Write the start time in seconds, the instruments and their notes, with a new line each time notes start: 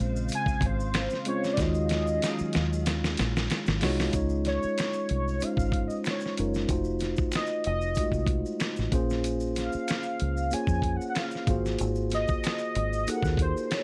Already playing: analog synth pad C#3 G#3 C5 F5, tine electric piano G#3 C4 C#4 F4 C5
0.00 fingered electric bass A#1
0.16 maracas
0.29 closed hi-hat, maracas
0.35 soft synth lead G#5
0.46 kick, maracas
0.61 fingered electric bass G#1, kick, closed hi-hat
0.66 soft synth lead C5
0.80 maracas
0.94 finger snap, snare, closed hi-hat, maracas
1.10 snare, maracas
1.25 tine electric piano G#3 C4 C#4 F4 C5, soft synth lead C#5, closed hi-hat
1.44 snare, maracas
1.53 analog synth pad C#4, soft synth lead D5, closed hi-hat
1.58 fingered electric bass D#2, analog synth pad D#3 F#3 G#4, tine electric piano G#3 D#4 F4 F#4 C#5, soft synth lead D#5, kick, snare, maracas
1.74 maracas
1.89 snare, closed hi-hat, maracas
2.07 maracas
2.22 finger snap, snare, closed hi-hat, maracas
2.39 muted fingered electric bass stroke, maracas
2.53 fingered electric bass D#2, snare, closed hi-hat, maracas
2.73 maracas
2.86 snare, closed hi-hat, maracas
3.04 snare, maracas
3.17 fingered electric bass A#1, snare, closed hi-hat, maracas
3.37 snare, maracas
3.50 finger snap, snare, closed hi-hat, maracas
3.66 fingered electric bass G#1, snare, maracas
3.81 fingered electric bass C2, tine electric piano G#3 D#4 F4 F#4 C#5, snare, open hi-hat, maracas
4.00 snare, maracas
4.13 fingered electric bass C#2, tine electric piano G#3 C#4 D#4 F4 C#5, kick, closed hi-hat, maracas
4.29 maracas
4.45 soft synth lead C#5, snare, closed hi-hat, maracas
4.63 muted fingered electric bass stroke, maracas
4.78 finger snap, snare, closed hi-hat, maracas
4.80 finger snap
4.93 maracas
5.09 fingered electric bass C2, closed hi-hat
5.28 maracas
5.40 tine electric piano G#3 C#4 D#4 F4 C5, soft synth lead F5, closed hi-hat, maracas
5.57 fingered electric bass G#1, kick, maracas
5.72 kick, closed hi-hat
5.87 soft synth lead D#5, maracas
6.04 finger snap, snare, closed hi-hat, maracas
6.07 soft synth lead C#5, finger snap
6.20 maracas
6.26 snare
6.37 fingered electric bass F#1, tine electric piano G#3 C#4 D#4 F4 A#4, closed hi-hat, maracas
6.54 snare, maracas
6.68 fingered electric bass F1, tine electric piano A3 D#4 F4 F#4 C5, kick, closed hi-hat, maracas
6.84 maracas
6.99 snare, closed hi-hat, maracas
7.16 kick, maracas
7.32 soft synth lead D#5, finger snap, snare, closed hi-hat, maracas
7.36 finger snap
7.46 maracas
7.64 fingered electric bass F1, soft synth lead D#5, closed hi-hat
7.81 maracas
7.95 tine electric piano G#3 D#4 F4 F#4, kick, closed hi-hat, maracas
7.99 tine electric piano A3 D#5
8.12 fingered electric bass C2, kick, maracas
8.27 kick, closed hi-hat
8.46 maracas
8.60 finger snap, snare, closed hi-hat, maracas
8.62 finger snap
8.76 fingered electric bass A1, snare, maracas
8.92 fingered electric bass A#1, tine electric piano A#3 C#4 F4 G#4 C5, kick, closed hi-hat, maracas
9.10 snare, maracas
9.24 closed hi-hat, maracas
9.40 maracas
9.56 soft synth lead F5, snare, closed hi-hat, maracas
9.73 muted fingered electric bass stroke, maracas
9.88 finger snap, snare, closed hi-hat, maracas
9.91 finger snap
10.03 maracas
10.20 fingered electric bass C#2, closed hi-hat
10.37 maracas
10.51 tine electric piano A#3 C#4 F4 G#4 C#5, soft synth lead G#5, muted fingered electric bass stroke, closed hi-hat, maracas
10.67 fingered electric bass F2, kick, maracas
10.82 kick, closed hi-hat
10.96 soft synth lead F#5
11.01 maracas
11.10 soft synth lead F#5
11.15 finger snap, snare, closed hi-hat, maracas
11.17 soft synth lead F5, finger snap
11.31 maracas
11.35 snare
11.47 fingered electric bass G#1, tine electric piano A#3 F4 F#4 G#4 C5, kick, closed hi-hat, maracas
11.66 snare, maracas
11.79 fingered electric bass G#1, closed hi-hat, maracas
11.95 maracas
12.10 snare, closed hi-hat, maracas
12.14 soft synth lead D#5
12.28 muted fingered electric bass stroke, kick, maracas
12.44 finger snap, snare, closed hi-hat, maracas
12.47 finger snap
12.58 maracas
12.75 fingered electric bass G#1, closed hi-hat
12.93 maracas
13.07 tine electric piano A#3 D#4 F#4 G#4 A4, soft synth lead F#5, muted fingered electric bass stroke, closed hi-hat, maracas
13.16 tine electric piano A#4
13.23 fingered electric bass D#2, kick, snare, maracas
13.37 kick, closed hi-hat
13.42 soft synth lead C5
13.57 maracas
13.67 soft synth lead C5, closed hi-hat
13.72 soft synth lead C#5, finger snap, snare, maracas